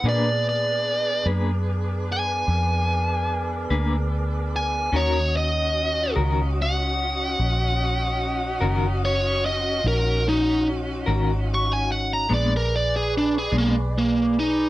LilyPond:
<<
  \new Staff \with { instrumentName = "Lead electric guitar" } { \time 12/8 \key ees \minor \tempo 4. = 49 d''8 d''4 r4 aes''2. aes''8 | des''8 ees''4 r8 ges''2. des''8 ees''8 | bes'8 ees'8 r4 des'''16 aes''16 ges''16 bes''16 d''16 bes'16 d''16 aes'16 d'16 aes'16 bes16 r16 bes8 ees'8 | }
  \new Staff \with { instrumentName = "Saxophone section" } { \time 12/8 \key ees \minor << { <d' b'>1. | <des' ees'>1.~ | <des' ees'>2. <ces'' d''>2. | } \\ { aes'2. bes'2. | ges'1.~ | ges'2. aes'2. | } >> }
  \new Staff \with { instrumentName = "Tonewheel organ" } { \time 12/8 \key ees \minor <ces' aes' d''>1. | <des' ges' ees''>1. | <des' ees' ges'>2. <aes' ces'' d''>2. | }
  \new Staff \with { instrumentName = "Clean electric guitar" } { \time 12/8 \key ees \minor <bes d' aes' ces''>8 r4 <bes d' aes' ces''>8 r2 r8 <bes d' aes' ces''>8 r4 | <ees des' ges' bes'>8 r4 <ees des' ges' bes'>8 r2 r8 <ees des' ges' bes'>8 r4 | r4. <ees des' ges' bes'>8 r4 <bes, aes ces' d'>8 r4 <bes, aes ces' d'>8 r4 | }
  \new Staff \with { instrumentName = "Fingered electric bass" } { \clef bass \time 12/8 \key ees \minor bes,4. ges,4. f,4. d,4. | ees,4. des,4. bes,,4. ges,,4. | bes,,4. aes,,4. bes,,4. ces,4. | }
>>